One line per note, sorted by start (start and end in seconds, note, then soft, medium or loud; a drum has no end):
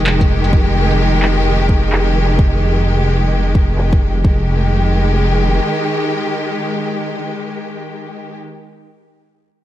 0.00 4.23 F1 medium
0.00 4.21 D#3 medium
0.00 4.21 G#3 medium
0.00 4.21 G4 medium
0.06 clap loud
0.21 kick loud
0.21 closed hi-hat soft
0.44 closed hi-hat medium
0.53 kick loud
0.91 closed hi-hat medium
1.14 closed hi-hat soft
1.22 clap loud
1.37 closed hi-hat medium
1.61 closed hi-hat soft
1.69 kick loud
1.84 closed hi-hat medium
1.92 clap loud
2.07 closed hi-hat soft
2.30 closed hi-hat medium
2.39 kick loud
2.76 closed hi-hat soft
3.23 closed hi-hat soft
3.46 closed hi-hat soft
3.55 kick loud
3.69 closed hi-hat soft
3.78 clap loud
3.93 kick loud
4.24 5.60 F1 medium
4.24 8.38 D#3 medium
4.24 8.37 G#3 medium
4.24 8.37 G4 medium
4.24 kick loud